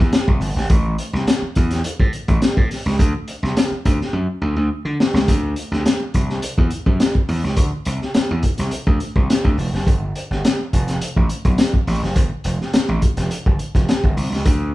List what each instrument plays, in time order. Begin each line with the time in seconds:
0.00 slap bass E2
0.12 snare, closed hi-hat
0.28 slap bass C2, kick
0.41 slap bass G1, open hi-hat
0.56 slap bass G#1, snare
0.70 slap bass A1, kick, closed hi-hat
0.98 closed hi-hat
1.13 slap bass C2, snare
1.27 snare, closed hi-hat
1.42 muted slap bass stroke
1.55 slap bass E2, kick, closed hi-hat
1.71 snare, closed hi-hat
1.84 muted slap bass stroke, closed hi-hat
1.99 slap bass A2, kick
2.13 closed hi-hat
2.28 slap bass A1, kick, closed hi-hat
2.42 snare, closed hi-hat
2.57 slap bass A2, kick
2.71 snare, open hi-hat
2.86 slap bass C#2, snare
2.99 slap bass D2, kick, closed hi-hat
3.28 closed hi-hat
3.43 slap bass C2, snare
3.57 snare, closed hi-hat
3.71 muted slap bass stroke
3.85 slap bass D2, kick, closed hi-hat
4.01 snare
4.13 slap bass F#2
4.42 slap bass D2
4.56 slap bass D2
4.85 slap bass D3
5.00 snare
5.14 slap bass C#2, snare
5.28 slap bass D2, kick, closed hi-hat
5.56 closed hi-hat
5.72 slap bass D2, snare
5.86 snare, closed hi-hat
6.14 slap bass C2, kick, closed hi-hat
6.29 snare
6.42 muted slap bass stroke, closed hi-hat
6.58 slap bass E2, kick
6.70 closed hi-hat
6.86 slap bass F#2, kick
7.00 snare, closed hi-hat
7.15 kick
7.29 slap bass E2, open hi-hat
7.44 slap bass C#2, snare
7.56 slap bass D2, kick, closed hi-hat
7.85 slap bass C2, closed hi-hat
8.01 snare
8.14 muted slap bass stroke, snare, closed hi-hat
8.31 slap bass E2
8.43 kick, closed hi-hat
8.58 slap bass C2, snare, closed hi-hat
8.71 closed hi-hat
8.87 slap bass D2, kick
9.00 closed hi-hat
9.16 slap bass C2, kick
9.30 snare, closed hi-hat
9.44 slap bass D2, kick
9.58 slap bass F1, open hi-hat
9.73 slap bass F#1, snare
9.87 slap bass G1, kick, closed hi-hat
10.15 closed hi-hat
10.31 slap bass G1, snare
10.45 snare, closed hi-hat
10.73 slap bass F1, kick, closed hi-hat
10.88 snare, closed hi-hat
11.01 muted slap bass stroke, closed hi-hat
11.16 slap bass A1, kick
11.29 closed hi-hat
11.45 slap bass B1, kick, closed hi-hat
11.58 snare, closed hi-hat
11.74 kick
11.87 slap bass A1, snare, open hi-hat
12.02 slap bass F#1, snare
12.16 slap bass G1, kick, closed hi-hat
12.44 slap bass F1, closed hi-hat
12.61 snare
12.73 muted slap bass stroke, snare, closed hi-hat
12.89 slap bass A1
13.02 kick, closed hi-hat
13.17 slap bass F1, snare, closed hi-hat
13.31 closed hi-hat
13.46 slap bass G1, kick
13.59 closed hi-hat
13.75 slap bass F1, kick, snare, closed hi-hat
13.89 snare, closed hi-hat
14.04 slap bass G1, kick
14.17 slap bass C2, open hi-hat
14.32 slap bass C#2, snare
14.45 slap bass D2, kick, closed hi-hat